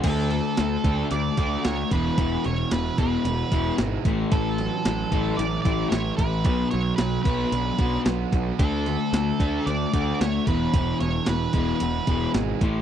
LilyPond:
<<
  \new Staff \with { instrumentName = "Lead electric guitar" } { \time 4/4 \key d \lydian \tempo 4 = 112 a'2 d''8 d''8 cis''8 b'8~ | b'8 cis''8 b'8 b'4. r4 | a'2 d''8 d''8 cis''8 b'8~ | b'8 cis''8 b'8 b'4. r4 |
a'2 d''8 d''8 cis''8 b'8~ | b'8 cis''8 b'8 b'4. r4 | }
  \new Staff \with { instrumentName = "Overdriven electric guitar" } { \clef bass \time 4/4 \key d \lydian d8 a8 d8 a8 d'8 fis'8 a8 e,8 | e,8 b,8 e8 gis8 b8 e'8 gis8 a,8 | a,8 fis8 fis8 a8 cis'8 e'8 a8 e'8 | b,8 fis8 fis8 b8 d'8 fis'8 b8 fis'8 |
d8 a8 d8 a8 d'8 fis'8 a8 e,8 | e,8 b,8 e8 gis8 b8 gis'8 gis8 a,8 | }
  \new Staff \with { instrumentName = "Overdriven electric guitar" } { \clef bass \time 4/4 \key d \lydian <d a d'>8 <d a>8 <d a>8 <d a d'>8 <d a>8 <d a d'>8 <d a>8 <e, b, e>8 | <e, b, e>8 <e, b,>8 <e, b,>8 <e, b, e>8 <e, b,>8 <e, b, e>8 <e, b,>8 <a, e a>8 | <a, e a>8 <a, e>8 <a, e>8 <a, e a>8 <a, e>8 <a, e a>8 <a, e>8 <a, e>8 | <b, fis b>8 <b, fis>8 <b, fis>8 <b, fis b>8 <b, fis>8 <b, fis b>8 <b, fis>8 <b, fis>8 |
<d a d'>8 <d a>8 <d a>8 <d a d'>8 <d a>8 <d a d'>8 <d a>8 <e, b, e>8 | <e, b, e>8 <e, b,>8 <e, b,>8 <e, b, e>8 <e, b,>8 <e, b, e>8 <e, b,>8 <a, e a>8 | }
  \new Staff \with { instrumentName = "Picked electric bass" } { \clef bass \time 4/4 \key d \lydian d,4 d,8 d,8 d,8 d,8 d,8 e,,8 | e,,8 e,,8 e,,8 e,,8 e,,8 e,,8 gis,,8 a,,8 | a,,4 a,,8 a,,8 a,,8 a,,8 a,,8 a,,8 | b,,8 b,,8 b,,8 b,,8 b,,8 b,,8 b,,8 b,,8 |
d,4 d,8 d,8 d,8 d,8 d,8 e,,8 | e,,8 e,,8 e,,8 e,,8 e,,8 e,,8 gis,,8 a,,8 | }
  \new DrumStaff \with { instrumentName = "Drums" } \drummode { \time 4/4 <cymc hh bd>8 hh8 <hh sn>8 <hh bd>8 hh8 <hh bd>8 <hh sn>8 <hh bd>8 | <hh bd>8 hh8 <hh sn>8 <hh bd>8 hh8 <hh bd>8 <hh sn>8 <hh bd>8 | <hh bd>8 hh8 <hh sn>8 <hh bd>8 hh8 <hh bd>8 <hh sn>8 <hh bd>8 | <hh bd>8 hh8 <hh sn>8 <hh bd>8 hh8 <hh bd>8 <hh sn>8 <hh bd>8 |
<hh bd>8 hh8 <hh sn>8 <hh bd>8 hh8 <hh bd>8 <hh sn>8 <hh bd>8 | <hh bd>8 hh8 <hh sn>8 <hh bd>8 hh8 <hh bd>8 <hh sn>8 <hh bd>8 | }
>>